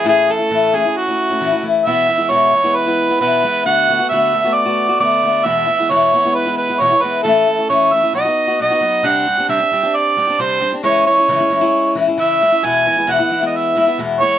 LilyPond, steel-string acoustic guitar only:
\new Staff \with { instrumentName = "Steel-string acoustic guitar" } { \time 4/4 \key e \major \tempo 4 = 134 <a, e a cis' e'>8 <e a cis' e'>16 <a cis' e'>16 <a, e a cis' e'>8 <e a cis' e'>16 <a cis' e'>8 <a cis' e'>8 <a cis' e'>16 <a, e a cis' e'>16 <a cis' e'>16 <e a cis' e'>8 | <e, b, e gis b e'>8 <e gis b e'>16 <e gis b e'>16 <e, b, e gis b e'>8 <e gis b e'>16 <e gis b e'>8 <e gis b e'>8 <e gis b e'>16 <e, b, e gis b e'>8 <e gis b e'>8 | <d a b fis'>8 <d a b fis'>16 <a b fis'>16 <d a b fis'>8 <d a b fis'>16 <a b fis'>8 <a b fis'>8 <a b fis'>16 <d a b fis'>8 <d a b fis'>8 | <e, b, e gis b e'>8 <e gis b e'>16 <e gis b e'>16 <e, b, e gis b e'>8 <e gis b e'>16 <e gis b e'>8 <e gis b e'>8 <e gis b e'>16 <e, b, e gis b e'>16 <e gis b e'>16 <e gis b e'>8 |
<a, e a cis' e'>8 <e a cis' e'>16 <a cis' e'>16 <a, e a cis' e'>8 <e a cis' e'>16 <a cis' e'>16 <b, fis b dis' fis'>16 <b dis' fis'>8 <b dis' fis'>16 <b, fis b dis' fis'>16 <b dis' fis'>16 <fis b dis' fis'>8 | <c g c' d' g'>8 <g c' d' g'>16 <c' d' g'>16 <c g c' d' g'>16 <c' d' g'>16 <g c' d' g'>16 <c' d' g'>8. <g c' d' g'>16 <c' d' g'>16 <c g c' d' g'>8 <g c' d' g'>16 <c' d' g'>16 | <cis e gis cis' e'>8 <e gis e'>16 <gis cis' e'>16 <cis e gis cis' e'>16 <gis cis' e'>16 <e gis cis' e'>16 <gis cis' e'>8. <e gis cis' e'>16 <gis cis' e'>16 <cis e gis cis' e'>8 <e gis cis' e'>16 <gis cis' e'>16 | <e, b, e gis b e'>8 <e gis b e'>16 <e gis b e'>16 <e, b, e gis b e'>16 <e gis b e'>16 <e gis b e'>16 <e gis b e'>8. <e gis b e'>16 <e gis b e'>16 <e, b, e gis b e'>8 <e gis b e'>8 | }